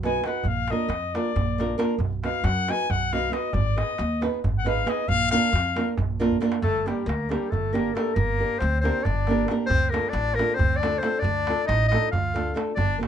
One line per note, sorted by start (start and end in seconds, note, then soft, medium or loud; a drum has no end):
0.00 0.19 B1 medium
0.00 0.19 B3 medium
0.00 darbuka tek medium
0.04 0.20 D#4 medium
0.04 0.20 F#4 medium
0.04 0.20 B4 medium
0.04 0.28 G#5 loud
0.14 darbuka tek soft
0.24 0.41 B3 medium
0.24 0.41 D#4 medium
0.24 0.41 F#4 soft
0.24 0.42 B4 medium
0.24 0.49 F#5 medium
0.24 darbuka tek medium
0.33 darbuka tek soft
0.44 0.72 A#1 medium
0.44 darbuka dum medium
0.48 0.72 F5 loud
0.57 darbuka tek soft
0.68 0.86 A#3 medium
0.68 0.86 D4 medium
0.68 1.16 D#5 medium
0.68 darbuka tek medium
0.72 0.87 F4 medium
0.72 0.87 A#4 medium
0.88 1.16 F2 medium
0.88 darbuka tek medium
1.14 1.30 A#3 medium
1.14 1.31 D4 medium
1.14 1.31 F4 medium
1.14 1.31 A#4 medium
1.14 1.79 D5 medium
1.14 darbuka tek medium
1.25 darbuka tek soft
1.36 1.74 A#1 medium
1.36 darbuka dum medium
1.58 1.74 A#3 medium
1.58 1.75 D4 medium
1.58 1.75 F4 medium
1.58 1.75 A#4 medium
1.58 darbuka tek medium
1.78 1.94 A#3 medium
1.78 1.94 D4 medium
1.78 1.95 F4 medium
1.78 1.95 A#4 medium
1.78 darbuka tek medium
1.98 2.26 B1 medium
1.98 darbuka dum medium
2.13 darbuka tek soft
2.24 2.40 B3 medium
2.24 2.40 D#4 medium
2.24 2.40 F#4 medium
2.24 2.40 B4 medium
2.24 2.46 F5 loud
2.24 darbuka tek medium
2.44 2.71 F#2 loud
2.44 2.72 F#5 loud
2.44 darbuka tek medium
2.68 2.85 B3 medium
2.68 2.85 D#4 medium
2.68 2.85 F#4 soft
2.68 2.86 B4 medium
2.68 2.92 G#5 loud
2.68 darbuka tek medium
2.80 darbuka tek soft
2.90 3.28 B1 medium
2.90 3.15 F#5 loud
2.90 darbuka dum medium
3.13 3.29 B3 medium
3.13 3.28 D#4 medium
3.13 3.29 F#4 medium
3.13 3.30 B4 medium
3.13 3.34 F5 loud
3.13 darbuka tek medium
3.31 3.48 B3 medium
3.31 3.48 D#4 medium
3.31 3.49 F#4 medium
3.31 3.49 B4 medium
3.31 3.55 D#5 medium
3.31 darbuka tek medium
3.53 3.81 G#1 medium
3.53 3.79 D5 loud
3.53 darbuka dum medium
3.66 darbuka tek soft
3.76 3.93 B3 medium
3.76 3.94 D#4 soft
3.76 3.94 G#4 soft
3.76 3.94 B4 medium
3.76 4.23 D#5 medium
3.76 darbuka tek medium
3.98 4.26 D#2 loud
3.98 darbuka tek medium
4.21 4.38 B3 medium
4.21 4.39 D#4 medium
4.21 4.39 G#4 medium
4.21 4.39 B4 medium
4.21 darbuka tek medium
4.34 darbuka tek soft
4.44 4.83 G#1 medium
4.44 darbuka dum medium
4.59 4.70 F#5 medium
4.64 4.81 B3 medium
4.64 4.82 D#4 medium
4.64 4.82 G#4 medium
4.64 4.82 B4 medium
4.64 4.91 F5 loud
4.64 darbuka tek medium
4.86 5.03 B3 medium
4.86 5.02 D#4 medium
4.86 5.03 G#4 medium
4.86 5.03 B4 medium
4.86 5.10 D#5 loud
4.86 darbuka tek medium
5.08 5.35 A#1 medium
5.08 5.30 F5 loud
5.08 darbuka dum medium
5.21 darbuka tek soft
5.31 5.48 A#3 medium
5.31 5.48 D4 medium
5.31 5.48 F4 medium
5.31 5.49 A#4 medium
5.31 5.94 F5 loud
5.31 darbuka tek medium
5.45 darbuka tek soft
5.53 5.80 F2 loud
5.53 darbuka tek medium
5.66 darbuka tek soft
5.76 5.93 A#3 medium
5.76 5.93 D4 medium
5.76 5.93 F4 soft
5.76 5.93 A#4 medium
5.76 darbuka tek medium
5.88 darbuka tek soft
5.98 6.37 A#1 medium
5.98 darbuka dum loud
6.10 darbuka tek soft
6.20 6.36 A#3 medium
6.20 6.36 D4 medium
6.20 6.36 F4 medium
6.20 6.37 A#4 medium
6.20 darbuka tek medium
6.32 darbuka dum medium
6.40 6.57 A#3 medium
6.40 6.57 D4 medium
6.40 6.57 F4 medium
6.40 6.58 A#4 medium
6.40 darbuka tek medium
6.52 darbuka tek medium
6.62 6.89 G1 medium
6.62 6.88 A3 loud
6.62 6.88 A4 medium
6.62 darbuka dum medium
6.86 7.10 G3 medium
6.86 7.02 A#3 medium
6.86 7.02 D4 medium
6.86 7.02 G4 medium
6.86 7.09 G4 medium
6.86 7.03 A#4 medium
6.86 darbuka tek medium
7.06 7.33 D2 loud
7.06 7.32 A#3 medium
7.06 7.32 A#4 medium
7.06 darbuka tek medium
7.29 7.53 G3 medium
7.29 7.46 A#3 medium
7.29 7.47 D4 medium
7.29 7.47 G4 medium
7.29 7.52 G4 medium
7.29 7.47 A#4 medium
7.29 darbuka tek medium
7.51 7.91 G1 medium
7.51 7.76 A3 medium
7.51 7.75 A4 medium
7.51 darbuka dum medium
7.64 darbuka tek soft
7.73 7.90 A#3 medium
7.73 7.97 A#3 medium
7.73 7.90 D4 medium
7.73 7.90 G4 medium
7.73 7.96 A#4 medium
7.73 7.90 A#4 medium
7.73 darbuka tek medium
7.87 darbuka tek soft
7.94 8.18 A3 medium
7.94 8.11 A#3 medium
7.94 8.11 D4 medium
7.94 8.12 G4 medium
7.94 8.16 A4 medium
7.94 8.12 A#4 medium
7.94 darbuka tek medium
8.14 8.43 G1 medium
8.14 8.61 A#3 medium
8.14 8.60 A#4 loud
8.14 darbuka dum medium
8.39 8.55 A#3 medium
8.39 8.56 D4 soft
8.39 8.56 G4 medium
8.39 8.56 A#4 medium
8.59 8.88 D2 loud
8.59 8.81 C4 medium
8.59 8.80 C5 loud
8.59 darbuka tek medium
8.81 9.00 A#3 medium
8.81 9.05 C4 medium
8.81 9.00 D4 medium
8.81 9.01 G4 soft
8.81 9.01 A#4 medium
8.81 9.05 C5 medium
8.85 darbuka tek medium
9.03 9.44 G1 medium
9.03 9.53 D4 medium
9.03 9.53 D5 medium
9.03 darbuka dum medium
9.17 darbuka tek soft
9.27 9.44 A#3 medium
9.27 9.45 D4 medium
9.27 9.45 G4 medium
9.27 9.45 A#4 medium
9.27 darbuka tek medium
9.38 darbuka tek soft
9.48 9.65 A#3 medium
9.48 9.66 D4 medium
9.48 9.66 G4 medium
9.48 9.66 A#4 medium
9.48 darbuka tek medium
9.66 9.97 D2 medium
9.66 9.93 C4 medium
9.66 9.91 C5 loud
9.71 darbuka dum medium
9.89 10.09 A3 medium
9.89 10.11 A#3 medium
9.89 10.09 D4 soft
9.89 10.11 A#4 medium
9.93 10.10 F4 soft
9.93 10.10 A4 medium
9.93 darbuka tek medium
10.09 10.35 D4 medium
10.09 10.36 D5 loud
10.13 10.40 A1 loud
10.13 darbuka tek medium
10.34 10.57 A#3 medium
10.34 10.56 A#4 loud
10.39 10.55 A3 medium
10.39 10.55 D4 medium
10.39 10.55 F4 medium
10.39 10.55 A4 medium
10.39 darbuka tek medium
10.55 10.81 C4 medium
10.55 10.77 C5 loud
10.59 10.98 D2 medium
10.59 darbuka dum medium
10.72 11.00 D5 loud
10.72 darbuka tek soft
10.80 10.98 A3 medium
10.80 11.02 D4 medium
10.80 10.99 D4 medium
10.80 darbuka tek medium
10.84 10.99 F4 medium
10.84 10.99 A4 medium
10.98 11.21 C4 medium
10.98 11.21 C5 medium
11.02 11.18 A3 medium
11.02 11.19 D4 medium
11.02 11.19 F4 medium
11.02 11.19 A4 medium
11.02 darbuka tek medium
11.19 11.64 D4 loud
11.19 11.66 D5 loud
11.19 darbuka dum medium
11.24 11.51 D2 medium
11.47 11.63 A3 medium
11.47 11.64 D4 medium
11.47 11.64 F4 soft
11.47 11.65 A4 medium
11.47 darbuka tek medium
11.58 darbuka tek soft
11.64 11.88 D#4 medium
11.64 11.88 D#5 loud
11.69 11.95 A1 loud
11.69 darbuka tek medium
11.81 darbuka tek soft
11.88 12.08 A3 medium
11.88 12.10 D#4 medium
11.88 12.10 D#5 loud
11.88 darbuka tek medium
11.93 12.08 D4 medium
11.93 12.09 F4 medium
11.93 12.09 A4 medium
12.03 darbuka tek soft
12.12 12.51 D2 medium
12.12 12.58 F4 medium
12.12 12.57 F5 medium
12.12 darbuka dum medium
12.34 12.51 A3 medium
12.34 12.51 D4 medium
12.34 12.51 F4 medium
12.34 12.51 A4 medium
12.34 darbuka tek medium
12.54 12.71 A3 medium
12.54 12.71 D4 medium
12.54 12.72 F4 medium
12.54 12.72 A4 medium
12.54 darbuka tek medium
12.67 darbuka tek soft
12.75 13.04 G1 medium
12.75 12.99 D4 medium
12.75 12.98 D5 medium
12.75 darbuka dum medium
12.98 13.07 A#3 medium
12.98 13.07 D4 medium
12.98 13.07 G4 medium
12.98 13.07 A#4 medium
13.03 darbuka tek medium